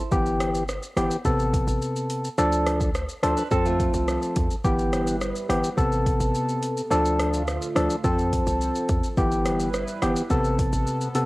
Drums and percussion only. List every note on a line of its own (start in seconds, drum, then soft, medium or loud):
0.12 kick loud
0.12 shaker medium
0.26 shaker medium
0.40 cross-stick loud
0.40 closed hi-hat medium
0.40 shaker medium
0.54 shaker medium
0.68 cross-stick medium
0.68 shaker medium
0.83 shaker medium
0.97 cross-stick medium
0.97 closed hi-hat medium
0.97 shaker medium
1.11 shaker medium
1.25 kick medium
1.25 shaker medium
1.39 shaker medium
1.54 kick loud
1.54 closed hi-hat medium
1.54 shaker medium
1.68 shaker medium
1.82 shaker medium
1.96 shaker soft
2.10 closed hi-hat medium
2.10 shaker soft
2.24 shaker medium
2.38 shaker medium
2.52 shaker medium
2.66 cross-stick medium
2.66 closed hi-hat medium
2.66 shaker medium
2.81 kick medium
2.81 shaker medium
2.95 cross-stick medium
2.95 shaker medium
3.09 shaker medium
3.23 cross-stick medium
3.23 closed hi-hat medium
3.23 shaker medium
3.37 shaker medium
3.51 kick medium
3.51 shaker medium
3.66 shaker soft
3.80 kick medium
3.80 closed hi-hat medium
3.80 shaker soft
3.94 shaker medium
4.08 cross-stick medium
4.08 shaker medium
4.22 shaker soft
4.36 kick loud
4.36 closed hi-hat medium
4.36 shaker soft
4.51 shaker medium
4.65 kick loud
4.65 shaker medium
4.79 shaker medium
4.93 cross-stick medium
4.93 closed hi-hat medium
4.93 shaker medium
5.07 shaker medium
5.21 cross-stick medium
5.21 shaker medium
5.36 shaker medium
5.50 cross-stick medium
5.50 closed hi-hat medium
5.50 shaker medium
5.64 shaker medium
5.78 kick medium
5.78 shaker medium
5.92 shaker soft
6.06 kick medium
6.06 closed hi-hat medium
6.06 shaker medium
6.20 shaker medium
6.35 shaker medium
6.49 shaker soft
6.63 closed hi-hat medium
6.63 shaker medium
6.77 shaker medium
6.91 shaker medium
7.05 shaker medium
7.20 cross-stick medium
7.20 closed hi-hat medium
7.20 shaker medium
7.34 shaker medium
7.48 cross-stick medium
7.48 shaker medium
7.62 shaker medium
7.76 cross-stick medium
7.76 closed hi-hat medium
7.76 shaker medium
7.90 shaker medium
8.04 kick medium
8.04 shaker medium
8.19 shaker soft
8.33 kick medium
8.33 closed hi-hat medium
8.33 shaker medium
8.47 shaker medium
8.61 shaker medium
8.75 shaker soft
8.89 kick loud
8.89 closed hi-hat medium
8.89 shaker medium
9.04 shaker medium
9.17 kick loud
9.17 shaker medium
9.31 shaker medium
9.46 cross-stick medium
9.46 closed hi-hat medium
9.46 shaker medium
9.60 shaker medium
9.74 cross-stick medium
9.74 shaker medium
9.88 shaker medium
10.02 cross-stick medium
10.02 closed hi-hat medium
10.02 shaker soft
10.16 shaker medium
10.30 kick medium
10.30 shaker medium
10.45 shaker medium
10.59 kick medium
10.59 closed hi-hat medium
10.59 shaker soft
10.73 shaker medium
10.87 shaker medium
11.01 shaker soft
11.15 closed hi-hat medium
11.15 shaker medium